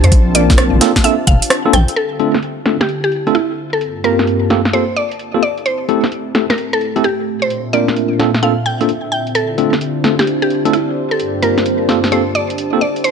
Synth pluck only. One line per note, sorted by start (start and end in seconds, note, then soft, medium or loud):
0.04 0.27 C5 medium
0.35 0.58 D5 medium
1.04 1.22 E5 medium
1.27 1.60 F5 medium
1.74 1.91 G5 medium
1.96 2.29 A4 medium
2.81 2.94 G4 medium
3.04 3.27 G4 medium
3.35 3.58 E4 medium
3.73 3.96 A4 medium
4.04 4.27 A#4 medium
4.73 4.91 C5 medium
4.96 5.29 D5 medium
5.43 5.60 D5 medium
5.66 5.98 C5 medium
6.50 6.63 A#4 medium
6.73 6.96 A4 medium
7.04 7.27 G4 medium
7.42 7.65 C5 medium
7.73 7.96 D5 medium
8.43 8.60 F5 medium
8.66 8.98 G5 medium
9.12 9.29 G5 medium
9.35 9.68 A4 loud
10.19 10.32 G4 medium
10.42 10.65 G4 medium
10.73 10.96 E4 medium
11.11 11.34 A4 medium
11.43 11.66 A#4 medium
12.12 12.30 C5 medium
12.35 12.68 D5 medium
12.81 12.99 D5 medium
13.04 13.11 C5 loud